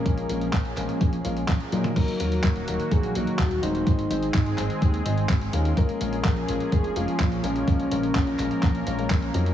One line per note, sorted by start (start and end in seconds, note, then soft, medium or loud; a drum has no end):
0.00 1.92 F3 medium
0.00 0.27 G#3 medium
0.00 1.92 A#3 medium
0.00 0.27 C#4 medium
0.00 1.92 C#4 medium
0.00 0.27 F4 medium
0.00 1.92 G#4 medium
0.00 0.27 A#4 loud
0.00 1.45 A#4 loud
0.06 0.25 A#1 medium
0.06 kick loud
0.06 closed hi-hat medium
0.18 closed hi-hat soft
0.29 0.49 A#1 loud
0.29 0.44 G#3 medium
0.29 0.44 C#4 medium
0.29 0.44 F4 medium
0.29 0.44 A#4 loud
0.29 closed hi-hat loud
0.41 closed hi-hat soft
0.53 0.73 A#1 medium
0.53 kick loud
0.53 clap loud
0.53 closed hi-hat medium
0.65 closed hi-hat soft
0.77 0.87 A#1 loud
0.77 1.00 G#3 medium
0.77 1.00 C#4 medium
0.77 1.00 F4 medium
0.77 1.00 A#4 medium
0.77 clap soft
0.77 closed hi-hat loud
0.89 closed hi-hat soft
1.01 1.20 A#1 medium
1.01 kick loud
1.01 closed hi-hat medium
1.13 closed hi-hat soft
1.25 1.44 A#1 medium
1.25 1.39 G#3 medium
1.25 1.39 C#4 medium
1.25 1.39 F4 medium
1.25 1.39 A#4 loud
1.25 closed hi-hat medium
1.37 closed hi-hat soft
1.49 1.58 A#1 medium
1.49 kick loud
1.49 clap loud
1.49 closed hi-hat medium
1.60 closed hi-hat soft
1.72 1.92 A#2 medium
1.72 2.17 F#3 loud
1.72 2.17 A#3 medium
1.72 2.17 D#4 medium
1.72 2.17 A#4 loud
1.72 closed hi-hat medium
1.72 high tom medium
1.84 closed hi-hat soft
1.84 mid tom medium
1.96 2.06 D#1 loud
1.96 5.73 D#3 medium
1.96 3.85 F#3 medium
1.96 3.85 A#3 medium
1.96 3.85 F#4 medium
1.96 2.18 A#4 loud
1.96 kick loud
1.96 closed hi-hat medium
1.96 crash loud
2.08 closed hi-hat soft
2.20 2.40 D#1 medium
2.20 2.34 F#3 medium
2.20 2.34 A#3 medium
2.20 2.34 D#4 medium
2.20 2.34 A#4 loud
2.20 2.93 A#4 loud
2.20 closed hi-hat loud
2.32 closed hi-hat soft
2.44 2.63 D#1 loud
2.44 kick loud
2.44 clap loud
2.44 closed hi-hat medium
2.56 closed hi-hat soft
2.68 2.77 D#1 medium
2.68 2.91 F#3 medium
2.68 2.91 A#3 medium
2.68 2.91 D#4 medium
2.68 2.91 A#4 medium
2.68 closed hi-hat loud
2.80 closed hi-hat soft
2.91 3.11 A#1 medium
2.91 3.17 G#4 loud
2.91 kick loud
2.91 closed hi-hat medium
3.03 closed hi-hat soft
3.15 3.25 A#1 medium
3.15 3.30 F#3 medium
3.15 3.30 A#3 medium
3.15 3.30 D#4 medium
3.15 3.65 F#4 loud
3.15 3.30 A#4 loud
3.15 closed hi-hat loud
3.27 closed hi-hat soft
3.39 3.59 D#1 loud
3.39 kick loud
3.39 clap loud
3.39 closed hi-hat medium
3.51 closed hi-hat soft
3.63 3.83 D#1 medium
3.63 4.08 G#3 loud
3.63 4.08 C4 medium
3.63 4.08 D#4 medium
3.63 5.06 D#4 loud
3.63 4.08 C5 loud
3.63 closed hi-hat loud
3.75 closed hi-hat soft
3.87 4.06 G#1 loud
3.87 5.75 G#3 medium
3.87 5.75 C4 medium
3.87 5.75 G#4 medium
3.87 kick loud
3.87 closed hi-hat medium
3.99 closed hi-hat soft
4.10 4.30 G#1 loud
4.10 4.25 G#3 medium
4.10 4.25 C4 medium
4.10 4.25 D#4 medium
4.10 4.25 C5 loud
4.10 closed hi-hat loud
4.23 closed hi-hat soft
4.34 4.54 G#1 medium
4.34 kick loud
4.34 clap loud
4.34 closed hi-hat medium
4.46 closed hi-hat soft
4.58 4.68 G#1 loud
4.58 4.81 G#3 medium
4.58 4.81 C4 medium
4.58 4.81 D#4 medium
4.58 4.81 C5 medium
4.58 clap soft
4.58 closed hi-hat loud
4.70 closed hi-hat soft
4.82 5.01 D#2 loud
4.82 kick loud
4.82 closed hi-hat medium
4.94 closed hi-hat soft
5.06 5.25 G#1 loud
5.06 5.20 G#3 medium
5.06 5.20 C4 medium
5.06 5.20 D#4 medium
5.06 5.20 C5 loud
5.06 closed hi-hat medium
5.18 closed hi-hat soft
5.29 5.49 G#1 medium
5.29 kick loud
5.29 clap loud
5.29 closed hi-hat medium
5.41 closed hi-hat soft
5.53 5.73 D#2 loud
5.53 5.98 G#3 loud
5.53 5.98 C#4 medium
5.53 5.98 F4 medium
5.53 5.98 A#4 loud
5.53 closed hi-hat medium
5.65 closed hi-hat soft
5.77 5.87 A#1 loud
5.77 9.54 F3 medium
5.77 9.54 A#3 medium
5.77 9.54 C#4 medium
5.77 7.66 G#4 medium
5.77 6.00 A#4 loud
5.77 kick loud
5.77 closed hi-hat medium
5.89 closed hi-hat soft
6.01 6.21 A#1 medium
6.01 6.15 G#3 loud
6.01 6.15 C#4 medium
6.01 6.15 F4 medium
6.01 6.15 A#4 loud
6.01 6.74 A#4 loud
6.01 closed hi-hat medium
6.13 closed hi-hat soft
6.25 6.44 A#1 loud
6.25 kick loud
6.25 clap loud
6.25 closed hi-hat medium
6.37 closed hi-hat soft
6.48 6.58 A#1 medium
6.48 6.71 G#3 medium
6.48 6.71 C#4 medium
6.48 6.71 F4 medium
6.48 6.71 A#4 medium
6.48 closed hi-hat medium
6.60 closed hi-hat soft
6.72 6.92 F1 medium
6.72 6.96 G#4 loud
6.72 kick loud
6.72 closed hi-hat medium
6.84 closed hi-hat soft
6.96 7.06 F1 medium
6.96 7.10 G#3 medium
6.96 7.10 C#4 medium
6.96 7.10 F4 medium
6.96 7.46 F4 loud
6.96 7.10 A#4 loud
6.96 closed hi-hat medium
7.08 closed hi-hat soft
7.20 7.39 A#1 loud
7.20 kick loud
7.20 clap loud
7.20 closed hi-hat medium
7.32 closed hi-hat soft
7.44 7.63 A#1 loud
7.44 7.89 G#3 medium
7.44 7.89 C#4 medium
7.44 8.87 C#4 loud
7.44 7.89 F4 medium
7.44 7.89 A#4 loud
7.44 closed hi-hat medium
7.56 closed hi-hat soft
7.67 7.87 A#1 medium
7.67 9.54 A#4 medium
7.67 kick loud
7.67 closed hi-hat medium
7.80 closed hi-hat soft
7.91 8.11 A#1 loud
7.91 8.06 G#3 loud
7.91 8.06 C#4 medium
7.91 8.06 F4 medium
7.91 8.06 A#4 loud
7.91 closed hi-hat medium
8.03 closed hi-hat soft
8.15 8.35 A#1 medium
8.15 kick loud
8.15 clap loud
8.15 closed hi-hat medium
8.27 closed hi-hat soft
8.39 8.49 A#1 loud
8.39 8.62 G#3 medium
8.39 8.62 C#4 medium
8.39 8.62 F4 medium
8.39 8.62 A#4 medium
8.39 clap soft
8.39 closed hi-hat medium
8.51 closed hi-hat soft
8.63 8.82 A#1 loud
8.63 kick loud
8.63 clap medium
8.63 closed hi-hat medium
8.75 closed hi-hat soft
8.87 9.06 A#1 loud
8.87 8.97 G#3 medium
8.87 8.97 C#4 medium
8.87 8.97 F4 medium
8.87 8.97 A#4 medium
8.87 closed hi-hat medium
8.99 9.13 G#3 medium
8.99 9.13 C#4 medium
8.99 9.13 F4 medium
8.99 9.13 A#4 loud
8.99 closed hi-hat soft
9.10 9.30 A#1 loud
9.10 kick loud
9.10 clap loud
9.10 closed hi-hat medium
9.22 closed hi-hat soft
9.34 9.54 F2 loud
9.34 9.54 F#3 medium
9.34 9.54 A#3 medium
9.34 9.54 D#4 medium
9.34 9.54 A#4 loud
9.34 closed hi-hat medium
9.46 closed hi-hat soft